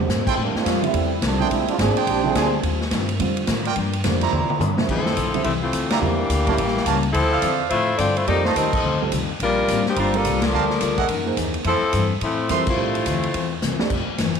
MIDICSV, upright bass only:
0, 0, Header, 1, 3, 480
1, 0, Start_track
1, 0, Key_signature, -1, "major"
1, 0, Tempo, 281822
1, 640, Time_signature, 4, 2, 24, 8
1, 24524, End_track
2, 0, Start_track
2, 0, Title_t, "Upright bass"
2, 0, Program_c, 0, 32
2, 137, Note_on_c, 0, 44, 70
2, 614, Note_off_c, 0, 44, 0
2, 637, Note_on_c, 0, 45, 81
2, 914, Note_off_c, 0, 45, 0
2, 1115, Note_on_c, 0, 41, 84
2, 1584, Note_off_c, 0, 41, 0
2, 1595, Note_on_c, 0, 40, 79
2, 2064, Note_off_c, 0, 40, 0
2, 2073, Note_on_c, 0, 36, 84
2, 2543, Note_off_c, 0, 36, 0
2, 2565, Note_on_c, 0, 34, 76
2, 2839, Note_off_c, 0, 34, 0
2, 3040, Note_on_c, 0, 32, 93
2, 3317, Note_off_c, 0, 32, 0
2, 3519, Note_on_c, 0, 34, 85
2, 3987, Note_off_c, 0, 34, 0
2, 4001, Note_on_c, 0, 38, 81
2, 4462, Note_off_c, 0, 38, 0
2, 4472, Note_on_c, 0, 39, 81
2, 4944, Note_off_c, 0, 39, 0
2, 4957, Note_on_c, 0, 43, 94
2, 5427, Note_off_c, 0, 43, 0
2, 5440, Note_on_c, 0, 41, 79
2, 5908, Note_off_c, 0, 41, 0
2, 5920, Note_on_c, 0, 45, 89
2, 6389, Note_off_c, 0, 45, 0
2, 6399, Note_on_c, 0, 43, 80
2, 6869, Note_off_c, 0, 43, 0
2, 6881, Note_on_c, 0, 41, 89
2, 7350, Note_off_c, 0, 41, 0
2, 7363, Note_on_c, 0, 40, 80
2, 7636, Note_off_c, 0, 40, 0
2, 7825, Note_on_c, 0, 43, 81
2, 8302, Note_off_c, 0, 43, 0
2, 8320, Note_on_c, 0, 41, 78
2, 8784, Note_off_c, 0, 41, 0
2, 8795, Note_on_c, 0, 34, 87
2, 9267, Note_off_c, 0, 34, 0
2, 9274, Note_on_c, 0, 36, 81
2, 9747, Note_off_c, 0, 36, 0
2, 9756, Note_on_c, 0, 38, 72
2, 10228, Note_off_c, 0, 38, 0
2, 10239, Note_on_c, 0, 40, 72
2, 10704, Note_off_c, 0, 40, 0
2, 10715, Note_on_c, 0, 38, 87
2, 11188, Note_off_c, 0, 38, 0
2, 11204, Note_on_c, 0, 33, 87
2, 11664, Note_off_c, 0, 33, 0
2, 11675, Note_on_c, 0, 37, 82
2, 12148, Note_off_c, 0, 37, 0
2, 12160, Note_on_c, 0, 38, 78
2, 12631, Note_off_c, 0, 38, 0
2, 12637, Note_on_c, 0, 40, 86
2, 13110, Note_off_c, 0, 40, 0
2, 13127, Note_on_c, 0, 45, 82
2, 13589, Note_off_c, 0, 45, 0
2, 13599, Note_on_c, 0, 43, 79
2, 14070, Note_off_c, 0, 43, 0
2, 14093, Note_on_c, 0, 41, 82
2, 14558, Note_off_c, 0, 41, 0
2, 14571, Note_on_c, 0, 39, 84
2, 15037, Note_off_c, 0, 39, 0
2, 15044, Note_on_c, 0, 38, 85
2, 15513, Note_off_c, 0, 38, 0
2, 15527, Note_on_c, 0, 36, 76
2, 15804, Note_off_c, 0, 36, 0
2, 16003, Note_on_c, 0, 34, 78
2, 16472, Note_off_c, 0, 34, 0
2, 16485, Note_on_c, 0, 33, 88
2, 16763, Note_off_c, 0, 33, 0
2, 16973, Note_on_c, 0, 31, 83
2, 17433, Note_off_c, 0, 31, 0
2, 17443, Note_on_c, 0, 36, 75
2, 17912, Note_off_c, 0, 36, 0
2, 17937, Note_on_c, 0, 38, 83
2, 18389, Note_off_c, 0, 38, 0
2, 18399, Note_on_c, 0, 38, 85
2, 18869, Note_off_c, 0, 38, 0
2, 18881, Note_on_c, 0, 42, 83
2, 19349, Note_off_c, 0, 42, 0
2, 19356, Note_on_c, 0, 39, 76
2, 19822, Note_off_c, 0, 39, 0
2, 19833, Note_on_c, 0, 41, 80
2, 20114, Note_off_c, 0, 41, 0
2, 20320, Note_on_c, 0, 43, 92
2, 20787, Note_off_c, 0, 43, 0
2, 20799, Note_on_c, 0, 45, 81
2, 21266, Note_off_c, 0, 45, 0
2, 21281, Note_on_c, 0, 41, 79
2, 21747, Note_off_c, 0, 41, 0
2, 21766, Note_on_c, 0, 45, 81
2, 22229, Note_off_c, 0, 45, 0
2, 22240, Note_on_c, 0, 38, 87
2, 22705, Note_off_c, 0, 38, 0
2, 22719, Note_on_c, 0, 40, 84
2, 23184, Note_off_c, 0, 40, 0
2, 23202, Note_on_c, 0, 36, 79
2, 23475, Note_off_c, 0, 36, 0
2, 23676, Note_on_c, 0, 29, 75
2, 23952, Note_off_c, 0, 29, 0
2, 24150, Note_on_c, 0, 31, 79
2, 24428, Note_off_c, 0, 31, 0
2, 24524, End_track
3, 0, Start_track
3, 0, Title_t, "Muted upright bass strokes"
3, 939, Note_on_c, 9, 29, 40
3, 1109, Note_off_c, 9, 29, 0
3, 2848, Note_on_c, 9, 29, 40
3, 3018, Note_off_c, 9, 29, 0
3, 3331, Note_on_c, 9, 29, 41
3, 3501, Note_off_c, 9, 29, 0
3, 7646, Note_on_c, 9, 29, 40
3, 7816, Note_off_c, 9, 29, 0
3, 15825, Note_on_c, 9, 29, 38
3, 15995, Note_off_c, 9, 29, 0
3, 16800, Note_on_c, 9, 29, 37
3, 16971, Note_off_c, 9, 29, 0
3, 20121, Note_on_c, 9, 29, 44
3, 20292, Note_off_c, 9, 29, 0
3, 23495, Note_on_c, 9, 29, 39
3, 23665, Note_off_c, 9, 29, 0
3, 23980, Note_on_c, 9, 29, 36
3, 24150, Note_off_c, 9, 29, 0
3, 24465, Note_on_c, 9, 29, 37
3, 24524, Note_off_c, 9, 29, 0
3, 24524, End_track
0, 0, End_of_file